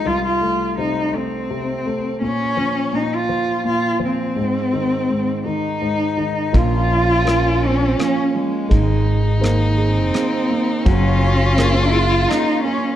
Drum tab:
RD |------|------|------|x-x-x-|
SD |------|------|------|--r-r-|
BD |------|------|------|o-----|

RD |x-x-x-|x-x-x-|
SD |--r-r-|--r-r-|
BD |o-----|o-----|